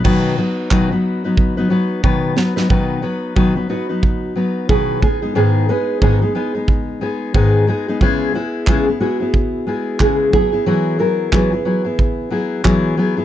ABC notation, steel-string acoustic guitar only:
X:1
M:4/4
L:1/16
Q:"Swing 16ths" 1/4=90
K:B
V:1 name="Steel-string acoustic guitar"
[B,,D,F,B,DB]2 [F,B,DB]2 [B,,D,F,B,DB] [F,B,DB]2 [F,B,DB]2 [F,B,DB] [F,B,DB]2 [B,,D,F,B,DB]2 [F,B,DB] [F,B,DB] | [B,,D,F,B,DB]2 [F,B,DB]2 [B,,D,F,B,DB] [F,B,DB] [F,B,DB] [F,B,DB]3 [F,B,DB]2 [B,,D,F,B,DB]2 [G,B,DG] [G,B,DG] | [G,,D,G,B,DG]2 [G,B,DG]2 [G,,D,G,B,DG] [G,B,DG] [G,B,DG] [G,B,DG]3 [G,B,DG]2 [G,,D,G,B,DG]2 [G,B,DG] [G,B,DG] | [C,G,B,EG]2 [G,B,EG]2 [C,G,B,EG] [B,EG] [G,B,EG] [B,EG]3 [G,B,EG]2 [C,G,B,EG]2 [F,B,EG] [B,EG] |
[E,F,B,EG]2 [F,B,EG]2 [E,F,B,EG] [B,EG] [F,B,EG] [B,EG]3 [F,B,EG]2 [E,F,B,EG]2 [F,B,EG] [B,EG] |]